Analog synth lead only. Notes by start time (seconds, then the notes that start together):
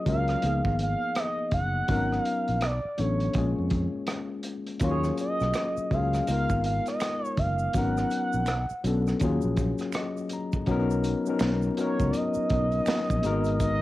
0.09 F5
0.83 F5
1.19 D#5
1.54 F#5
2.24 F5
2.63 D5
2.99 C#5
4.83 C#5
5.21 D#5
5.93 F5
6.29 F5
6.66 F5
6.88 D#5
7.25 C#5
7.39 F5
7.76 F#5
11.80 C#5
12.10 D5
12.16 D#5
13.61 D#5